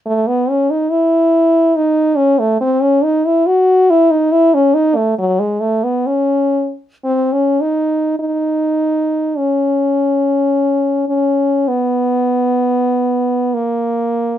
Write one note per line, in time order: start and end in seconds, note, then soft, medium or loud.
0.06 0.29 A3 medium
0.28 0.51 B3 medium
0.50 0.72 C#4 medium
0.70 0.93 D#4 medium
0.91 1.78 E4 medium
1.76 2.18 D#4 medium
2.16 2.40 C#4 medium
2.39 2.60 A3 medium
2.61 2.84 C4 medium
2.82 3.05 C#4 medium
3.04 3.27 D#4 medium
3.26 3.48 E4 medium
3.47 3.92 F#4 medium
3.90 4.13 E4 medium
4.11 4.34 D#4 medium
4.32 4.56 E4 medium
4.54 4.76 C#4 medium
4.74 4.97 D#4 medium
4.96 5.18 A3 medium
5.18 5.41 F#3 medium
5.40 5.62 G#3 medium
5.61 5.85 A3 medium
5.84 6.08 B3 medium
6.06 6.73 C#4 medium
7.04 7.34 C4 medium
7.33 7.62 C#4 medium
7.61 8.19 D#4 medium
8.20 9.39 D#4 medium
9.37 11.08 C#4 medium
11.09 11.69 C#4 medium
11.68 13.55 B3 medium
13.54 14.38 A#3 medium